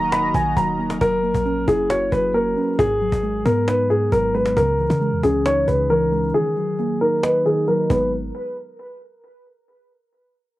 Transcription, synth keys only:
Already playing: D#3 F#3 A#3 D#4
0.12 D#5
0.34 D#3
0.57 F#3
0.79 A#3
1.01 F#3
1.23 A#3
1.46 C#4
1.67 E4
1.90 F#4
2.12 F#3
2.34 A#3
2.57 C#4
2.79 G#2
3.01 F#3
3.23 G#3
3.45 B3
3.67 D#4
3.90 G#2
4.12 F#3
4.34 G#3
4.57 C#3
4.79 E3
5.01 G#3
5.24 C#4
5.45 D#4
5.68 C#3
5.90 E3
6.12 G#3
6.35 D#3
6.57 F#3
6.79 A#3
7.02 D#4
7.24 D#5
7.45 D#3
7.68 F#3
7.90 F#3 G#3 B3 D#4

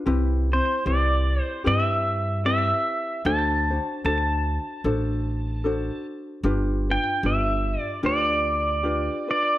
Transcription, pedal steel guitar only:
0.53 C5
0.87 D5
1.42 C5
1.67 E5
2.46 E5
3.26 A5
4.06 A5
6.91 G5
7.26 E5
7.80 D5
8.06 D5
9.31 D5

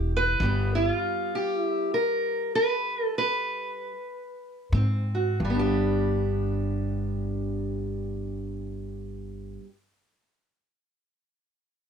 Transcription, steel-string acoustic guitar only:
Already playing: C3 E4 G4
0.17 B4
0.41 G2 G3 B3 G4
0.75 E4
0.89 F4
1.35 G4
1.61 E4
1.94 A#4
2.55 B4
3.04 A4
3.18 B4
4.74 G#2 C4
5.15 F#4
5.40 G2
5.45 G3
5.50 B3
5.54 D4
5.59 G4

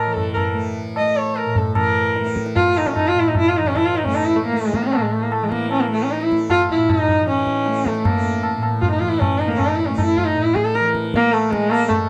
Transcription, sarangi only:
Already playing: A#4
0.13 A4
0.33 A#4
0.98 D#5
1.17 C#5
1.38 A#4
1.57 A4
1.75 A#4
2.56 F4
2.78 D#4
2.87 C#4
2.96 D#4
3.08 F4
3.19 E4
3.28 D#4
3.39 E4
3.49 F4
3.58 D#4
3.67 C#4
3.76 E4
3.85 F4
3.97 D#4
4.06 C#4
4.15 D#4
4.25 E4
4.36 A3
4.46 A#3
4.57 A3
4.66 G#3
4.75 A#3
4.83 C#4
4.93 A#3
5.02 G#3
5.12 A3
5.23 A#3
5.33 A3
5.43 G#3
5.50 A#3
5.71 C#4
5.80 A#3
5.91 A3
6.03 C#4
6.11 D#4
6.20 E4
6.50 F4
6.72 E4
6.90 D#4
7.29 C#4
7.86 A3
8.05 A#3
8.81 F4
8.91 D#4
9.00 F4
9.09 E4
9.19 C#4
9.39 D#4
9.48 A#3
9.57 C#4
9.67 D#4
9.76 E4
9.86 C#4
9.97 D#4
10.05 E4
10.17 F4
10.25 D#4
10.43 E4
10.54 G#4
10.64 A4
10.75 A#4
11.16 A#3
11.33 A3
11.51 G#3
11.70 A#3
11.88 A3

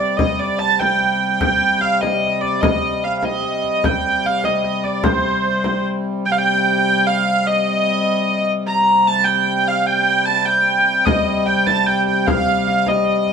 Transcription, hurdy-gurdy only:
Already playing: D5
0.17 D#5
0.40 D5
0.59 A5
0.80 G5
1.40 G5
1.81 F5
2.01 D#5
2.41 D5
2.61 D#5
3.04 F5
3.17 F5
3.25 D#5
3.85 G5
4.26 F5
4.45 D#5
4.64 D#5
4.84 D5
5.04 C5
6.26 G5
6.32 F5
6.39 G5
7.07 F5
7.47 D#5
8.67 A#5
9.07 A5
9.25 G5
9.68 F5
9.87 G5
10.26 A5
10.45 G5
11.05 D#5
11.46 G5
11.66 A5
11.86 G5
12.06 G5
12.27 F5
12.68 F5
12.88 D#5

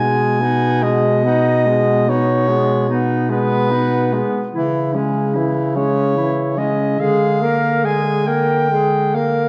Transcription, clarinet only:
0.00 B3
0.42 D#4
0.84 B3
1.26 D#4
1.68 B3
2.08 D#4
2.49 B3
2.89 D#4
3.30 B3
3.71 D#4
4.13 B3
4.54 E4
4.93 C#4
5.35 E4
5.76 C#4
6.17 E4
6.57 C#4
6.99 G#4
7.42 A#4
7.84 G#4
8.27 A#4
8.72 G#4
9.16 A#4

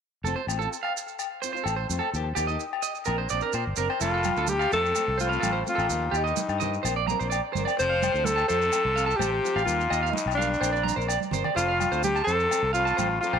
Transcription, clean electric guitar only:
0.24 A4
0.36 C5
0.59 A4
0.83 F5
1.42 C5
1.53 C5
1.64 A4
1.76 C5
1.99 A4
2.35 G4
2.47 D#5
2.83 D#5
3.06 A#4
3.18 C5
3.30 D5
3.42 A#4
3.54 C5
3.78 A#4
3.90 C5
4.02 A4
4.14 A4
4.38 A4
4.59 F5
4.72 A4
5.18 C5
5.29 F5
5.40 A4
5.53 C5
5.75 A4
6.11 G4
6.24 D#5
6.60 D#5
6.83 C5
6.96 D5
7.08 A#5
7.19 C5
7.30 D5
7.53 C5
7.65 D5
7.77 muted clean electric guitar stroke
7.90 F5
8.12 C5
8.36 A5
8.48 C5
8.96 F5
9.06 A5
9.19 C5
9.56 F5
9.90 D#5
10.03 F5
10.37 F5
10.61 C5
10.73 D5
10.83 A#5
10.96 C5
11.08 D5
11.33 C5
11.45 D5
11.56 C5
11.68 F5
11.92 C5
12.16 A5
12.27 C5
12.73 F5
12.85 A5
12.97 C5
13.33 C5

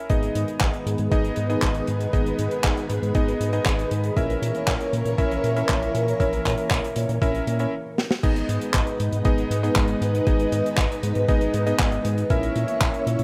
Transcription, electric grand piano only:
0.10 B3 D#4 G#4 D#5
1.11 B3 D#4 G#4 D#5
1.50 B3 D#4 G#4 D#5
2.13 B3 D#4 G#4 D#5
3.15 B3 D#4 G#4 D#5
3.53 B3 D#4 G#4 D#5
4.17 C#4 E4 A#4 E5
5.18 C#4 E4 A#4 E5
5.56 C#4 E4 A#4 E5
6.20 C#4 E4 A#4 E5
7.22 C#4 E4 A#4 E5
7.60 C#4 E4 A#4 E5
8.23 B3 D#4 G#4 D#5
9.25 B3 D#4 G#4 D#5
9.63 B3 D#4 G#4 D#5
10.27 B3 D#4 G#4 D#5
11.28 B3 D#4 G#4 D#5
11.67 B3 D#4 G#4 D#5
12.30 C#4 E4 A#4 E5

